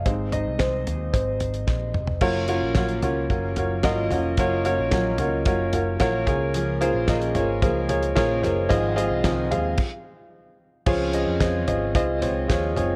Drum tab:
CC |----------------|x---------------|----------------|----------------|
HH |x-x-x-x-x-xx----|--x-xxx-x-x-x-x-|x-x-x-x-x-x-x-x-|x-x-xxx-x-xxx-x-|
SD |----o-------o---|----o-------o---|----o-------o---|----o-------o-o-|
T2 |--------------o-|----------------|----------------|----------------|
FT |--o---o---o----o|------o---o---o-|------o---o---o-|------o---o---o-|
BD |o---o---o---o---|o---o---o---o---|o---o---o---o-o-|----o---o---o---|

CC |--------x-------|x---------------|
HH |x-x-x-x---------|--x-x-x-x-x-x-x-|
SD |----o-----------|----o-------o---|
T2 |----------------|----------------|
FT |------o---------|------o---o---o-|
BD |o---o---o-------|o---o---o---o---|